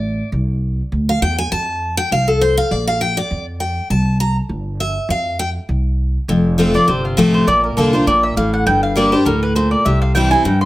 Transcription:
0.00 0.20 A1 medium
0.00 0.29 D5 loud
0.32 0.80 C2 medium
0.92 1.18 D2 medium
1.09 1.22 F5 loud
1.22 1.47 E2 medium
1.22 1.38 G5 loud
1.38 1.51 G#5 loud
1.52 1.99 F2 medium
1.52 1.95 A5 loud
1.97 2.11 G5 loud
2.11 2.59 C2 medium
2.11 2.28 F5 loud
2.28 2.41 A4 medium
2.41 2.57 C5 medium
2.57 2.71 F5 loud
2.71 3.18 A#1 medium
2.71 2.87 D5 medium
2.87 3.01 F5 loud
3.01 3.17 G5 loud
3.17 3.45 D5 loud
3.31 3.78 F2 medium
3.60 3.88 G5 loud
3.90 4.38 C2 medium
3.90 4.18 A5 medium
4.20 4.36 A#5 loud
4.49 4.97 G1 medium
4.80 5.08 E5 medium
5.09 5.56 F2 loud
5.09 5.38 F5 medium
5.39 5.49 G5 loud
5.69 6.16 C2 medium
6.28 6.76 F1 loud
6.28 6.86 F2 medium
6.58 6.74 F3 medium
6.58 6.74 A3 medium
6.58 6.75 C4 medium
6.58 6.73 F4 medium
6.74 6.88 C4 medium
6.74 6.87 F4 medium
6.74 6.88 D5 loud
6.88 7.13 G1 medium
6.88 7.45 C3 medium
6.88 7.04 C5 medium
7.05 7.18 F4 medium
7.17 7.43 A1 medium
7.17 7.46 F3 loud
7.17 7.46 A3 loud
7.17 7.47 C4 medium
7.17 7.47 F4 loud
7.17 7.34 A4 medium
7.34 7.47 C5 medium
7.47 7.71 A#1 medium
7.47 8.05 A#2 medium
7.47 7.63 D5 loud
7.64 7.77 A#4 medium
7.77 8.02 C2 medium
7.77 7.93 D3 medium
7.77 7.93 A#3 medium
7.77 7.93 D4 loud
7.77 7.92 F4 medium
7.77 7.93 A4 medium
7.93 8.07 D4 medium
7.93 8.06 F4 medium
7.93 8.07 C5 medium
8.07 8.32 A#1 medium
8.07 8.36 A#2 medium
8.07 8.23 D5 medium
8.23 8.36 E5 medium
8.36 8.62 A1 medium
8.36 8.65 A2 loud
8.36 8.53 F5 medium
8.53 8.66 F#5 medium
8.66 9.14 G1 medium
8.66 9.23 G2 medium
8.66 8.82 G5 loud
8.83 8.96 F5 medium
8.96 9.12 G3 medium
8.96 9.12 A#3 medium
8.96 9.12 D4 medium
8.96 9.11 G4 medium
8.96 9.12 D5 medium
9.12 9.26 D4 medium
9.12 9.25 G4 medium
9.12 9.25 C5 medium
9.25 9.73 D2 medium
9.25 9.55 A2 medium
9.25 9.42 A#4 medium
9.43 9.55 B4 loud
9.55 9.84 A#2 medium
9.55 9.71 C5 medium
9.71 9.85 D5 medium
9.85 10.33 C2 medium
9.85 10.42 C3 medium
9.85 10.01 E5 medium
10.02 10.14 F5 medium
10.15 10.31 E3 medium
10.15 10.31 G3 medium
10.15 10.32 C4 medium
10.15 10.30 E4 loud
10.15 10.30 G5 loud
10.31 10.45 C4 medium
10.31 10.44 E4 medium
10.31 10.44 G#5 loud
10.45 10.65 G2 medium
10.45 10.61 G5 medium
10.61 10.65 C6 loud

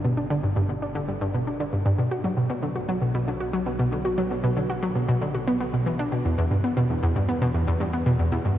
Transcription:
0.00 2.09 G1 medium
0.05 0.14 B2 medium
0.17 0.27 D4 medium
0.30 0.36 D3 medium
0.43 0.53 G2 medium
0.56 0.62 G2 medium
0.69 0.79 B2 medium
0.82 0.92 D4 medium
0.95 1.01 D3 medium
1.08 1.18 G2 medium
1.21 1.27 G2 medium
1.34 1.43 B2 medium
1.47 1.56 D4 medium
1.60 1.65 D3 medium
1.73 1.82 G2 medium
1.85 1.91 G2 loud
1.98 2.08 B2 medium
2.11 6.23 B1 medium
2.11 2.21 F#4 medium
2.24 2.30 F#3 medium
2.37 2.47 B2 medium
2.50 2.56 B2 loud
2.63 2.73 D3 medium
2.76 2.86 F#4 medium
2.89 2.95 F#3 loud
3.02 3.11 B2 medium
3.15 3.21 B2 loud
3.28 3.37 D3 medium
3.40 3.50 F#4 medium
3.53 3.59 F#3 medium
3.66 3.76 B2 medium
3.79 3.85 B2 loud
3.92 4.02 D3 medium
4.05 4.15 F#4 medium
4.18 4.24 F#3 loud
4.31 4.41 B2 medium
4.44 4.50 B2 medium
4.57 4.67 D3 medium
4.70 4.80 F#4 medium
4.83 4.89 F#3 medium
4.96 5.05 B2 medium
5.09 5.14 B2 medium
5.22 5.31 D3 medium
5.34 5.44 F#4 medium
5.47 5.57 B3 loud
5.60 5.70 B3 medium
5.73 5.86 B2 medium
5.86 5.96 E3 medium
5.99 6.09 D4 loud
6.12 6.18 B2 medium
6.25 6.35 E2 medium
6.25 8.58 E2 medium
6.38 6.44 E2 loud
6.51 6.61 G2 medium
6.64 6.74 B3 medium
6.77 6.83 B2 medium
6.90 6.99 E2 medium
7.03 7.08 E2 loud
7.15 7.25 G2 medium
7.28 7.38 B3 medium
7.41 7.47 B2 loud
7.54 7.64 E2 medium
7.67 7.73 E2 loud
7.80 7.90 G2 medium
7.93 8.03 B3 medium
8.06 8.12 B2 loud
8.19 8.29 E2 medium
8.32 8.38 E2 loud
8.45 8.55 G2 medium

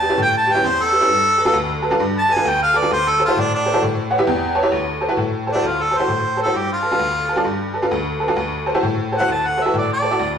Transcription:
0.00 0.06 G4 soft
0.00 0.06 B4 medium
0.00 0.19 A5 loud
0.09 0.18 C#4 medium
0.09 0.18 E4 medium
0.09 0.18 G4 medium
0.09 0.18 B4 medium
0.18 0.54 A2 medium
0.22 0.35 G5 loud
0.37 0.54 A5 medium
0.47 0.51 G4 soft
0.47 0.52 B4 soft
0.52 0.63 C#4 medium
0.52 0.63 E4 medium
0.52 0.64 G4 medium
0.52 0.64 B4 medium
0.52 0.69 G5 loud
0.64 1.00 E2 medium
0.64 0.84 C5 loud
0.83 1.69 A4 loud
0.92 0.96 G4 soft
0.92 0.97 B4 medium
1.01 1.09 C#4 medium
1.01 1.09 E4 medium
1.01 1.09 G4 medium
1.01 1.09 B4 medium
1.09 1.45 G2 medium
1.38 1.42 A4 soft
1.38 1.42 B4 medium
1.45 1.54 D4 medium
1.45 1.54 F4 medium
1.45 1.54 A4 medium
1.45 1.54 B4 medium
1.54 1.90 D2 medium
1.82 1.87 A4 medium
1.82 1.87 B4 medium
1.91 1.99 D4 medium
1.91 1.99 F4 medium
1.91 2.00 A4 medium
1.91 2.00 B4 loud
2.00 2.36 G2 medium
2.19 2.34 A5 loud
2.29 2.33 A4 soft
2.29 2.33 B4 soft
2.29 2.50 G#5 medium
2.36 2.45 D4 medium
2.36 2.45 F4 medium
2.36 2.45 A4 medium
2.36 2.45 B4 medium
2.45 2.81 D2 medium
2.45 2.62 G5 loud
2.63 2.79 F5 loud
2.74 2.78 A4 medium
2.74 2.79 B4 medium
2.74 2.91 D5 loud
2.82 2.91 D4 medium
2.82 2.91 F4 medium
2.82 2.91 A4 medium
2.82 2.91 B4 medium
2.91 3.27 D2 medium
2.91 3.10 C5 loud
3.09 3.22 A4 medium
3.19 3.24 A4 soft
3.19 3.24 C5 medium
3.25 3.36 E4 medium
3.25 3.41 F4 loud
3.25 3.36 F#4 medium
3.25 3.36 A4 medium
3.25 3.37 C5 medium
3.37 3.73 A2 medium
3.37 3.53 D4 loud
3.55 3.83 D4 loud
3.66 3.70 A4 soft
3.66 3.70 C5 medium
3.73 3.82 E4 medium
3.73 3.82 F#4 medium
3.73 3.82 A4 medium
3.73 3.82 C5 medium
3.82 4.18 A2 medium
4.10 4.15 B4 soft
4.10 4.15 C#5 soft
4.10 4.26 F#5 medium
4.18 4.27 E4 medium
4.18 4.27 G4 medium
4.18 4.27 B4 medium
4.18 4.27 E5 medium
4.27 4.63 E2 loud
4.27 4.54 G5 medium
4.55 4.60 B4 medium
4.55 4.60 C#5 medium
4.55 4.71 A5 medium
4.63 4.72 E4 medium
4.63 4.72 G4 medium
4.63 4.72 B4 medium
4.63 4.72 C#5 medium
4.72 5.08 D2 medium
5.01 5.05 A4 soft
5.01 5.06 C5 soft
5.09 5.17 E4 medium
5.09 5.18 F#4 medium
5.09 5.18 A4 medium
5.09 5.18 B4 medium
5.17 5.54 A2 medium
5.47 5.51 A4 soft
5.47 5.51 C5 soft
5.52 5.68 D4 medium
5.52 5.63 E4 medium
5.52 5.63 F#4 medium
5.52 5.64 A4 medium
5.52 5.64 C5 medium
5.62 5.99 D2 medium
5.67 5.84 F4 medium
5.82 5.99 A4 medium
5.91 5.96 A4 soft
5.91 5.96 C5 soft
5.98 6.08 E4 medium
5.98 6.08 F#4 medium
5.98 6.09 A4 medium
5.98 6.40 C5 medium
5.98 6.09 C5 medium
6.08 6.45 A2 medium
6.37 6.42 A4 soft
6.37 6.42 C5 soft
6.42 6.54 E4 medium
6.42 6.54 F#4 medium
6.42 6.60 A4 medium
6.42 6.54 A4 medium
6.46 6.55 C5 medium
6.54 6.91 G2 medium
6.58 6.71 G4 medium
6.73 7.60 F4 medium
6.83 6.87 A4 soft
6.83 6.88 B4 soft
6.91 7.00 D4 medium
6.91 7.00 F4 medium
6.91 7.00 A4 medium
6.91 7.00 B4 medium
6.99 7.36 D2 medium
7.29 7.33 A4 soft
7.29 7.34 B4 soft
7.36 7.45 D4 medium
7.36 7.45 F4 medium
7.36 7.46 A4 medium
7.36 7.46 D5 medium
7.45 7.82 G2 medium
7.74 7.79 A4 soft
7.74 7.79 B4 medium
7.82 7.91 D4 medium
7.82 7.91 F4 medium
7.82 7.91 A4 medium
7.82 7.91 B4 medium
7.91 8.28 D2 medium
8.20 8.24 A4 medium
8.20 8.25 B4 medium
8.28 8.37 D4 medium
8.28 8.37 F4 medium
8.28 8.37 A4 medium
8.28 8.37 B4 medium
8.36 8.73 D2 medium
8.66 8.70 A4 soft
8.66 8.71 C5 medium
8.75 8.83 E4 medium
8.75 8.83 F#4 medium
8.75 8.83 A4 medium
8.75 8.83 C5 medium
8.83 9.19 A2 medium
9.12 9.16 A4 soft
9.12 9.16 C5 soft
9.17 9.28 E4 medium
9.17 9.28 F#4 medium
9.17 9.28 A4 medium
9.17 9.28 C5 medium
9.17 9.30 F#5 medium
9.28 9.65 D2 medium
9.28 9.48 A5 medium
9.47 9.64 F#5 medium
9.57 9.61 A4 soft
9.57 9.62 C5 soft
9.63 9.74 E4 medium
9.63 9.74 F#4 medium
9.63 9.74 A4 medium
9.63 9.74 B4 medium
9.63 9.75 E5 medium
9.74 10.10 A2 medium
9.78 9.91 D5 medium
9.93 10.35 D5 medium
10.02 10.07 A4 soft
10.02 10.07 C5 soft
10.11 10.19 E4 medium
10.11 10.19 F#4 medium
10.11 10.20 A4 medium
10.11 10.20 D5 medium
10.19 10.38 D2 medium

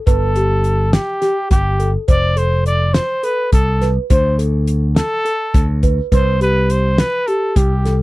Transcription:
0.07 0.96 G1 medium
0.07 0.95 A4 medium
0.07 0.29 B4 medium
0.07 kick loud
0.07 closed hi-hat medium
0.36 0.81 G4 medium
0.36 closed hi-hat medium
0.64 closed hi-hat medium
0.93 1.50 G4 medium
0.93 snare loud
0.93 closed hi-hat medium
1.22 1.67 G4 medium
1.22 snare soft
1.22 closed hi-hat medium
1.51 1.96 G1 medium
1.51 1.91 G4 medium
1.51 kick medium
1.51 snare soft
1.51 closed hi-hat medium
1.80 2.02 A4 medium
1.80 closed hi-hat soft
2.08 2.97 F1 medium
2.08 2.31 C5 medium
2.08 2.39 D5 medium
2.08 kick loud
2.08 closed hi-hat medium
2.36 2.81 A4 medium
2.36 2.66 C5 medium
2.36 closed hi-hat medium
2.66 2.95 D5 medium
2.66 closed hi-hat medium
2.94 3.26 C5 medium
2.94 snare medium
2.94 closed hi-hat medium
3.23 3.68 A4 medium
3.23 3.53 B4 medium
3.23 closed hi-hat medium
3.52 3.97 C2 medium
3.52 3.93 A4 medium
3.52 kick medium
3.52 closed hi-hat medium
3.81 4.04 B4 medium
3.81 snare soft
3.81 closed hi-hat medium
4.10 4.99 D2 medium
4.10 4.33 C5 medium
4.10 4.37 C5 medium
4.10 kick loud
4.10 closed hi-hat medium
4.38 4.83 A4 medium
4.38 closed hi-hat medium
4.67 closed hi-hat medium
4.96 5.79 A4 loud
4.96 snare loud
4.96 closed hi-hat medium
5.25 5.70 A4 medium
5.25 closed hi-hat medium
5.54 5.99 D2 medium
5.54 kick loud
5.54 closed hi-hat medium
5.83 6.05 B4 medium
5.83 kick medium
5.83 closed hi-hat medium
6.12 7.01 C2 medium
6.12 6.34 B4 medium
6.12 6.39 C5 medium
6.12 kick medium
6.12 closed hi-hat medium
6.41 6.85 G4 medium
6.41 6.73 B4 medium
6.41 closed hi-hat medium
6.70 7.01 C5 medium
6.70 closed hi-hat medium
6.98 7.29 B4 medium
6.98 snare loud
6.98 closed hi-hat medium
7.27 7.72 G4 medium
7.27 7.58 A4 medium
7.27 closed hi-hat medium
7.56 8.01 C2 medium
7.56 7.99 G4 medium
7.56 kick loud
7.56 closed hi-hat medium
7.85 8.03 A4 medium
7.85 snare soft
7.85 closed hi-hat medium

